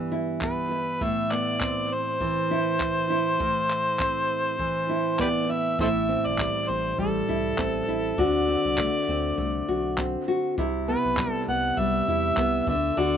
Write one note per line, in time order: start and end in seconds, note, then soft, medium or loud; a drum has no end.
0.00 1.01 G2 medium
0.00 2.21 E3 medium
0.00 1.08 G3 medium
0.00 0.42 B3 soft
0.00 0.11 E4 soft
0.12 0.71 E4 medium
0.41 1.31 B3 medium
0.41 1.04 B4 medium
0.41 kick medium
0.41 clap medium
0.71 2.51 E4 medium
1.01 3.39 A2 medium
1.01 1.34 E5 loud
1.01 kick loud
1.31 1.91 B3 medium
1.31 1.95 D5 medium
1.31 clap medium
1.61 4.00 C4 medium
1.61 kick loud
1.61 clap medium
1.93 5.20 C5 medium
2.21 4.59 E3 medium
2.21 kick medium
2.51 3.10 E4 medium
2.80 kick loud
2.80 clap medium
3.10 4.89 E4 medium
3.40 5.78 A2 medium
3.40 kick loud
3.70 clap medium
3.99 6.09 C4 medium
3.99 kick loud
3.99 clap loud
4.59 8.09 E3 medium
4.59 kick medium
4.89 5.49 E4 medium
5.19 5.86 B3 medium
5.19 5.28 G4 medium
5.19 5.27 B4 medium
5.19 5.52 D5 medium
5.19 kick medium
5.19 clap medium
5.49 5.80 E4 medium
5.49 5.80 E5 medium
5.79 6.17 A1 medium
5.79 8.18 A2 medium
5.79 7.28 E4 medium
5.79 5.87 A4 medium
5.79 5.89 C5 medium
5.79 6.28 E5 loud
5.79 kick loud
6.09 6.68 C4 medium
6.25 6.50 G1 medium
6.25 6.71 D5 medium
6.38 6.97 G3 medium
6.38 kick medium
6.38 clap loud
6.69 6.94 A1 medium
6.69 7.58 C4 medium
6.69 6.99 C5 medium
6.98 7.23 A1 loud
6.98 8.25 G3 medium
6.98 8.21 A4 medium
6.98 kick medium
7.29 7.53 C2 medium
7.29 7.87 E4 medium
7.58 7.83 A1 medium
7.58 8.48 C4 medium
7.58 kick loud
7.58 clap loud
7.88 8.13 A1 medium
7.88 8.18 E4 medium
8.18 8.56 D2 loud
8.18 10.58 D3 medium
8.18 9.67 F#4 medium
8.18 9.99 D5 medium
8.18 kick loud
8.48 9.08 C4 medium
8.65 8.89 C2 medium
8.78 9.37 A3 medium
8.78 kick loud
8.78 clap loud
9.08 9.33 D2 loud
9.08 9.98 C4 medium
9.38 9.63 C2 medium
9.38 10.64 A3 medium
9.38 kick medium
9.68 10.17 B1 medium
9.68 10.27 F#4 medium
9.98 10.88 C4 medium
9.98 kick medium
9.98 clap loud
10.28 10.58 F#4 medium
10.58 10.96 C2 loud
10.58 12.74 C3 medium
10.58 12.07 E4 medium
10.58 kick loud
10.88 11.47 B3 medium
10.88 11.32 B4 medium
11.05 11.29 B1 medium
11.17 11.77 G3 medium
11.17 kick loud
11.17 clap loud
11.32 11.44 A4 medium
11.48 11.72 C2 medium
11.48 12.37 B3 medium
11.48 11.81 F#5 loud
11.77 12.02 C2 medium
11.77 12.74 G3 medium
11.77 12.68 E5 loud
11.77 kick medium
12.08 12.32 E2 medium
12.08 12.74 E4 medium
12.37 12.62 C2 loud
12.37 12.74 B3 medium
12.37 kick loud
12.37 clap medium
12.67 12.91 D2 loud
12.67 12.97 D3 medium
12.67 13.01 E5 medium
12.67 kick loud
12.97 13.17 D2 loud
12.97 13.17 D3 medium
12.97 13.17 F#4 medium
12.97 13.17 D5 loud